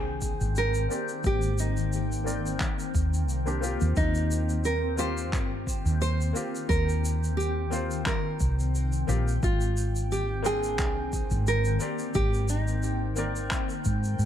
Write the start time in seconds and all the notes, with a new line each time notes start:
Already playing: C2 D#3 A#3 C4 D4 G#4 G5
0.22 kick, shaker
0.41 G#1, shaker
0.56 A#4, shaker
0.74 shaker
0.89 A#3 C4 G4 D5, shaker
1.08 shaker
1.24 G#1 G4, kick, shaker
1.42 shaker
1.59 D#4, shaker
1.77 shaker
1.93 shaker
2.12 shaker
2.24 A#3 C4 A#4 D5, shaker
2.46 shaker
2.60 kick, clap, shaker
2.80 shaker
2.94 D#2, kick, shaker
3.14 shaker
3.28 C2, shaker
3.46 A#3 C4 D4 G4, shaker
3.61 A#3 C4 F4 G4, shaker
3.81 D#2, shaker
3.96 D#2 D#3 D#4 G5, kick, shaker
4.15 shaker
4.31 shaker
4.49 shaker
4.65 A#4, shaker
4.96 A#3 C4 F4 G4 C5, shaker
5.18 shaker
5.33 G2, kick, clap, shaker
5.67 kick, shaker
5.86 D#2, shaker
6.02 C5, shaker
6.21 shaker
6.33 A#3 C4 F4 G4, shaker
6.55 shaker
6.69 D#2 A#4, kick, shaker
6.89 shaker
7.05 shaker
7.24 shaker
7.37 G4, shaker
7.70 A#3 C4 F4 C5, shaker
7.91 shaker
8.06 A#4, kick, clap, shaker
8.40 C2, kick, shaker
8.60 shaker
8.75 shaker
8.93 shaker
9.07 A#1 A#3 C4 F4 G4, shaker
9.28 shaker
9.43 G#1 D#3 A#3 C4 F4, kick, shaker
9.61 shaker
9.77 shaker
9.96 shaker
10.12 G4, shaker
10.43 A#3 C4 D4 G#4 G5, shaker
10.63 shaker
10.79 C2, kick, clap, shaker
11.13 kick, shaker
11.31 G#1, shaker
11.47 A#4, shaker
11.65 shaker
11.79 A#3 C4 G4 D5, shaker
11.99 shaker
12.14 G#1 G4, kick, shaker
12.34 shaker
12.49 D#4, shaker
12.68 shaker
12.83 shaker
13.16 A#3 C4 A#4 D5, shaker
13.36 shaker
13.51 kick, clap, shaker
13.69 shaker
13.85 G#2, kick, shaker
14.04 shaker
14.19 G#2, shaker